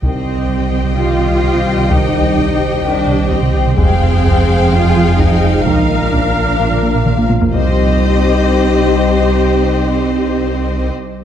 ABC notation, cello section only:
X:1
M:4/4
L:1/8
Q:1/4=128
K:Cm
V:1 name="Cello section"
C4 F4 | E4 D2 C2 | C4 F2 E2 | E2 D4- D z |
C8- | C8 |]